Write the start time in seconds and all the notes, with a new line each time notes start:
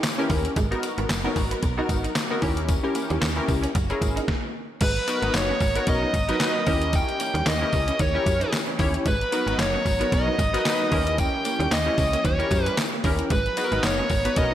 Already playing: E3 C#4 G4
0.03 muted clean electric guitar stroke, snare, clap, closed hi-hat, tambourine
0.18 C#4 E4 G4 A#4
0.29 D#2 A#3, kick, open hi-hat, tambourine
0.45 closed hi-hat
0.56 G#1 F#3 G#3 B3 A#4, kick, closed hi-hat, tambourine
0.71 B3 D#4 F#4 A#4, closed hi-hat
0.83 muted clean electric guitar stroke, closed hi-hat, tambourine
0.98 G#1 B3, closed hi-hat
1.09 F#1, snare, clap, closed hi-hat, tambourine
1.24 B3 C#4 D#4 F#4 A#4
1.36 G#1, muted clean electric guitar stroke, kick, open hi-hat, tambourine
1.51 B3, closed hi-hat
1.63 B1, kick, closed hi-hat, tambourine
1.77 B3 D#4 F#4 A#4
1.89 G#1, muted clean electric guitar stroke, kick, closed hi-hat, tambourine
2.04 D#4, closed hi-hat
2.15 snare, clap, closed hi-hat, tambourine
2.30 B3 D#4 F#4 A#4
2.42 D#2 E3 C#4 E4 G4 A#4, kick, open hi-hat, tambourine
2.57 closed hi-hat
2.69 kick, closed hi-hat, tambourine
2.83 C#4 E4 G4 A#4, muted clean electric guitar stroke
2.95 A#3, closed hi-hat, tambourine
3.10 D#2 G3, closed hi-hat
3.21 D#2 A#3, snare, clap, closed hi-hat, tambourine
3.36 C#4 E4 G4 A#4, muted clean electric guitar stroke
3.48 C#2, kick, open hi-hat, tambourine
3.63 C#4, closed hi-hat
3.75 F#1 A#3 F#4, kick, closed hi-hat, tambourine
3.90 C#4 E4 G#4 A#4, muted clean electric guitar stroke, closed hi-hat
4.02 G#1, kick, closed hi-hat, tambourine
4.16 D#4, closed hi-hat
4.28 kick, snare
4.81 G#1 F#3 G#3 B3 B4 A#5, kick, closed hi-hat, crash, tambourine
4.96 closed hi-hat
5.08 B3 D#4 F#4 A#4, muted clean electric guitar stroke, closed hi-hat, tambourine
5.22 G#1 B3 A#4 D#5, closed hi-hat
5.34 F#1 C#5, snare, clap, closed hi-hat, tambourine
5.49 C#4
5.60 G#1, muted clean electric guitar stroke, kick, open hi-hat, tambourine
5.75 B3 D#4 F#4 A#4, closed hi-hat
5.87 B1 C#4 A#4 C#5 D#5, kick, closed hi-hat, tambourine
6.02 F#3 D#4 B4
6.14 G#1, muted clean electric guitar stroke, kick, closed hi-hat, tambourine
6.28 F#3 B3 D#4 F#4 A#4 B4, closed hi-hat
6.40 F#3 D#4 B4, snare, clap, closed hi-hat, tambourine
6.66 D#2 E3 C#4 E4 G4 A#4, kick, open hi-hat, tambourine
6.82 closed hi-hat
6.93 G5, kick, closed hi-hat, tambourine
7.08 muted clean electric guitar stroke, closed hi-hat
7.20 A#3, closed hi-hat, tambourine
7.34 D#2 G3, closed hi-hat
7.46 D#2 A#3 D#5, snare, clap, closed hi-hat, tambourine
7.61 C#4 E4 G4 A#4, muted clean electric guitar stroke
7.73 C#2, kick, open hi-hat, tambourine
7.88 C#4, closed hi-hat
7.99 D#2 A#3 C#5, kick, closed hi-hat, tambourine
8.14 C#4 E4 G4 A#4, muted clean electric guitar stroke
8.26 F#2, kick, closed hi-hat, tambourine
8.40 D#4, closed hi-hat
8.52 muted clean electric guitar stroke, snare, clap, closed hi-hat, tambourine
8.67 C#4
8.79 D#2 A#3 C#4 E4 G4 C#5, kick, open hi-hat
8.94 closed hi-hat
9.05 G#1 F#3 G#3 B3 B4 A#5, kick, closed hi-hat, tambourine
9.21 closed hi-hat
9.32 B3 D#4 F#4 A#4, muted clean electric guitar stroke, closed hi-hat, tambourine
9.47 G#1 B3 A#4 D#5, closed hi-hat
9.58 F#1 C#5, snare, clap, closed hi-hat, tambourine
9.74 C#4
9.86 G#1, muted clean electric guitar stroke, kick, open hi-hat, tambourine
10.00 B3 D#4 F#4 A#4, closed hi-hat
10.12 B1 C#4 A#4 C#5 D#5, kick, closed hi-hat, tambourine
10.26 F#3 D#4 B4
10.39 G#1, muted clean electric guitar stroke, kick, closed hi-hat, tambourine
10.53 F#3 B3 D#4 F#4 A#4 B4, closed hi-hat
10.65 F#3 D#4 B4, snare, clap, closed hi-hat, tambourine
10.91 D#2 E3 C#4 E4 G4 A#4, kick, open hi-hat
11.07 closed hi-hat
11.18 G5, kick, closed hi-hat, tambourine
11.34 muted clean electric guitar stroke
11.45 A#3, closed hi-hat, tambourine
11.60 D#2 G3, closed hi-hat
11.71 D#2 A#3 D#5, snare, clap, closed hi-hat, tambourine
11.86 C#4 E4 G4 C#5, muted clean electric guitar stroke
11.98 C#2, kick, open hi-hat, tambourine
12.13 A#3, closed hi-hat
12.24 D#2 F#3 C#5, kick, closed hi-hat, tambourine
12.39 C#4 E4 G4 A#4, muted clean electric guitar stroke, closed hi-hat
12.51 F#2, kick, closed hi-hat, tambourine
12.66 G3, closed hi-hat
12.77 muted clean electric guitar stroke, snare, clap, closed hi-hat, tambourine
12.92 A#3
13.04 D#2 C#4 E4 G4 A#4, kick, open hi-hat
13.19 closed hi-hat
13.30 G#1 F#3 G#3 B3 B4 A#5, kick, closed hi-hat, tambourine
13.46 closed hi-hat
13.57 B3 D#4 F#4 G#4, muted clean electric guitar stroke, closed hi-hat, tambourine
13.64 A#4
13.72 G#1 B3 A#4 D#5, closed hi-hat
13.83 F#1 C#5, snare, clap, closed hi-hat, tambourine
13.99 C#4
14.10 G#1, muted clean electric guitar stroke, kick, open hi-hat, tambourine
14.25 B3 D#4 F#4 B4, closed hi-hat
14.36 B1 C#4 A#4 C#5 D#5, kick, closed hi-hat, tambourine
14.51 D#4